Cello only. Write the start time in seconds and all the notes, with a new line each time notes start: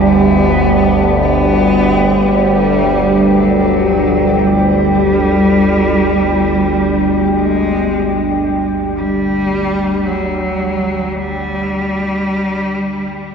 0.06 B3
1.20 B3
2.28 G3
3.39 F#3
4.52 G3
7.32 G#3
8.96 G3
10.07 F#3
11.15 G3